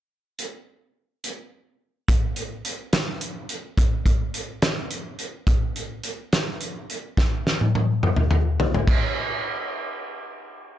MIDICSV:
0, 0, Header, 1, 2, 480
1, 0, Start_track
1, 0, Tempo, 566572
1, 318, Time_signature, 6, 3, 24, 8
1, 9137, End_track
2, 0, Start_track
2, 0, Title_t, "Drums"
2, 328, Note_on_c, 9, 42, 49
2, 413, Note_off_c, 9, 42, 0
2, 1050, Note_on_c, 9, 42, 48
2, 1135, Note_off_c, 9, 42, 0
2, 1766, Note_on_c, 9, 36, 90
2, 1766, Note_on_c, 9, 42, 77
2, 1850, Note_off_c, 9, 36, 0
2, 1850, Note_off_c, 9, 42, 0
2, 2000, Note_on_c, 9, 42, 55
2, 2085, Note_off_c, 9, 42, 0
2, 2244, Note_on_c, 9, 42, 60
2, 2329, Note_off_c, 9, 42, 0
2, 2480, Note_on_c, 9, 42, 78
2, 2483, Note_on_c, 9, 38, 105
2, 2565, Note_off_c, 9, 42, 0
2, 2567, Note_off_c, 9, 38, 0
2, 2720, Note_on_c, 9, 42, 69
2, 2805, Note_off_c, 9, 42, 0
2, 2958, Note_on_c, 9, 42, 58
2, 3043, Note_off_c, 9, 42, 0
2, 3199, Note_on_c, 9, 36, 99
2, 3202, Note_on_c, 9, 42, 77
2, 3283, Note_off_c, 9, 36, 0
2, 3287, Note_off_c, 9, 42, 0
2, 3436, Note_on_c, 9, 36, 72
2, 3440, Note_on_c, 9, 42, 59
2, 3521, Note_off_c, 9, 36, 0
2, 3524, Note_off_c, 9, 42, 0
2, 3678, Note_on_c, 9, 42, 59
2, 3762, Note_off_c, 9, 42, 0
2, 3916, Note_on_c, 9, 42, 73
2, 3918, Note_on_c, 9, 38, 88
2, 4000, Note_off_c, 9, 42, 0
2, 4003, Note_off_c, 9, 38, 0
2, 4157, Note_on_c, 9, 42, 57
2, 4241, Note_off_c, 9, 42, 0
2, 4395, Note_on_c, 9, 42, 54
2, 4480, Note_off_c, 9, 42, 0
2, 4633, Note_on_c, 9, 36, 96
2, 4633, Note_on_c, 9, 42, 66
2, 4718, Note_off_c, 9, 36, 0
2, 4718, Note_off_c, 9, 42, 0
2, 4879, Note_on_c, 9, 42, 55
2, 4963, Note_off_c, 9, 42, 0
2, 5113, Note_on_c, 9, 42, 54
2, 5198, Note_off_c, 9, 42, 0
2, 5359, Note_on_c, 9, 42, 67
2, 5362, Note_on_c, 9, 38, 91
2, 5444, Note_off_c, 9, 42, 0
2, 5447, Note_off_c, 9, 38, 0
2, 5596, Note_on_c, 9, 42, 56
2, 5681, Note_off_c, 9, 42, 0
2, 5844, Note_on_c, 9, 42, 49
2, 5929, Note_off_c, 9, 42, 0
2, 6078, Note_on_c, 9, 36, 95
2, 6085, Note_on_c, 9, 38, 55
2, 6163, Note_off_c, 9, 36, 0
2, 6170, Note_off_c, 9, 38, 0
2, 6326, Note_on_c, 9, 38, 56
2, 6411, Note_off_c, 9, 38, 0
2, 6448, Note_on_c, 9, 48, 52
2, 6533, Note_off_c, 9, 48, 0
2, 6568, Note_on_c, 9, 48, 67
2, 6652, Note_off_c, 9, 48, 0
2, 6803, Note_on_c, 9, 47, 66
2, 6888, Note_off_c, 9, 47, 0
2, 6917, Note_on_c, 9, 45, 63
2, 7002, Note_off_c, 9, 45, 0
2, 7037, Note_on_c, 9, 45, 84
2, 7122, Note_off_c, 9, 45, 0
2, 7283, Note_on_c, 9, 43, 78
2, 7368, Note_off_c, 9, 43, 0
2, 7409, Note_on_c, 9, 43, 68
2, 7493, Note_off_c, 9, 43, 0
2, 7519, Note_on_c, 9, 36, 101
2, 7523, Note_on_c, 9, 49, 77
2, 7603, Note_off_c, 9, 36, 0
2, 7608, Note_off_c, 9, 49, 0
2, 9137, End_track
0, 0, End_of_file